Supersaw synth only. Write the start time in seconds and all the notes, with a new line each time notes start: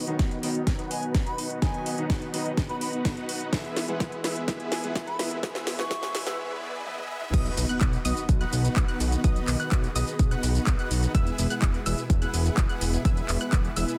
0.07 B3 D#4 F#4 B4 F#5
0.43 B3 D#4 F#4 B4 D#5
0.79 B3 D#4 F#4 B4 F#5
1.26 B3 D#4 F#4 B4 F#5
1.62 B3 D#4 F#4 B4 D#5
1.98 B3 D#4 F#4 B4 F#5
2.34 B3 D#4 F#4 B4 D#5
2.69 B3 D#4 F#4 B4 F#5
3.17 B3 D#4 F#4 B4 F#5
3.53 B3 E4 G#4 B4 E5
3.88 B3 E4 G#4 B4 F#5
4.24 B3 E4 G#4 B4 E5
4.48 B3 E4 G#4 B4 E5
4.84 B3 E4 G#4 B4 F#5
5.19 B3 E4 G#4 B4 E5
5.43 B3 E4 G#4 B4 E5
5.79 B3 E4 G#4 B4 F#5
5.91 B3 E4 G#4 B4 E5
6.26 B3 E4 G#4 B4 F#5
6.38 B3 E4 G#4 B4 E5
6.62 B3 E4 G#4 B4 E5
6.86 B3 E4 G#4 B4 E5
7.10 B3 E4 G#4 B4 E5
7.34 B3 D#4 F#4 B4 D#5
7.69 B3 D#4 F#4 B4 F#5
8.05 B3 D#4 F#4 B4 D#5
8.41 B3 D#4 F#4 B4 F#5
8.88 B3 D#4 F#4 B4 F#5
9.24 B3 D#4 F#4 B4 D#5
9.60 B3 D#4 F#4 B4 F#5
9.96 B3 D#4 F#4 B4 D#5
10.31 B3 D#4 F#4 B4 F#5
10.79 B3 D#4 F#4 B4 F#5
11.15 B3 E4 G#4 B4 E5
11.50 B3 E4 G#4 B4 F#5
11.86 B3 E4 G#4 B4 E5
12.22 B3 E4 G#4 B4 F#5
12.69 B3 E4 G#4 B4 F#5
13.05 B3 E4 G#4 B4 E5
13.41 B3 E4 G#4 B4 F#5
13.77 B3 E4 G#4 B4 E5